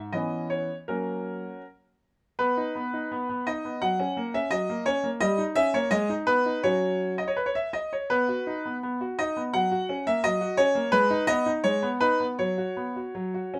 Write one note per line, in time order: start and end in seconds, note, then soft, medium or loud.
0.00 0.11 G#2 medium
0.12 0.67 E3 soft
0.12 0.68 B3 soft
0.12 0.68 C#4 soft
0.12 0.47 D#5 medium
0.50 0.73 C#5 medium
0.88 1.42 F#3 soft
0.88 1.50 A#3 soft
0.88 1.61 C#4 soft
0.88 1.61 F#4 soft
0.88 1.64 A#4 medium
2.39 2.57 B3 medium
2.39 3.47 B4 medium
2.57 2.76 D#4 medium
2.75 2.94 B3 medium
2.94 3.12 D#4 medium
3.12 3.28 B3 medium
3.29 3.48 B3 medium
3.47 3.66 D#4 medium
3.47 3.82 D#5 medium
3.65 3.82 B3 soft
3.82 3.99 F#3 medium
3.82 4.34 F#5 loud
3.99 4.18 C#4 medium
4.17 4.35 A#3 medium
4.34 4.53 C#4 medium
4.34 4.52 E5 medium
4.51 4.68 F#3 medium
4.51 4.82 D#5 loud
4.69 4.87 A#3 medium
4.86 5.05 C#4 medium
4.86 5.07 C#5 loud
5.03 5.21 A#3 medium
5.20 5.38 G3 medium
5.20 5.42 D#5 loud
5.38 5.57 D#4 medium
5.56 5.75 C#4 medium
5.56 5.74 E5 loud
5.74 5.92 A#3 medium
5.74 5.92 C#5 loud
5.91 6.09 G#3 medium
5.91 6.13 D#5 loud
6.09 6.29 D#4 medium
6.27 6.46 B3 medium
6.27 6.63 B4 loud
6.46 6.64 D#4 medium
6.63 7.15 F#3 medium
6.63 7.22 C#4 medium
6.63 7.22 F#4 medium
6.63 7.14 C#5 loud
7.18 7.27 D#5 medium
7.27 7.37 C#5 medium
7.36 7.46 B4 medium
7.46 7.55 C#5 medium
7.55 7.74 E5 medium
7.73 7.92 D#5 medium
7.93 8.11 C#5 medium
8.10 8.29 B3 medium
8.10 8.75 B4 loud
8.29 8.48 F#4 medium
8.47 8.66 D#4 medium
8.66 8.82 B3 medium
8.83 9.01 B3 medium
9.01 9.20 F#4 medium
9.19 9.38 D#4 medium
9.19 9.40 D#5 loud
9.37 9.54 B3 medium
9.53 9.71 F#3 medium
9.53 10.06 F#5 loud
9.72 9.90 F#4 medium
9.89 10.07 C#4 medium
10.06 10.24 A#3 medium
10.06 10.24 E5 loud
10.24 10.40 F#3 medium
10.24 10.58 D#5 loud
10.41 10.59 F#4 medium
10.57 10.76 C#4 medium
10.57 10.93 C#5 loud
10.75 10.93 A#3 medium
10.92 11.10 G#3 medium
10.92 11.24 B4 loud
11.10 11.29 D#4 medium
11.27 11.47 B3 medium
11.27 11.49 D#5 loud
11.46 11.65 D#4 medium
11.64 11.82 G#3 medium
11.64 11.86 C#5 loud
11.83 12.02 B3 medium
12.01 12.21 D#4 medium
12.01 12.23 B4 loud
12.20 12.39 B3 medium
12.39 12.58 F#3 medium
12.39 13.54 C#5 medium
12.58 12.78 F#4 medium
12.77 12.97 B3 medium
12.96 13.15 F#4 medium
13.15 13.34 F#3 medium
13.34 13.55 F#4 medium
13.54 13.60 C#4 medium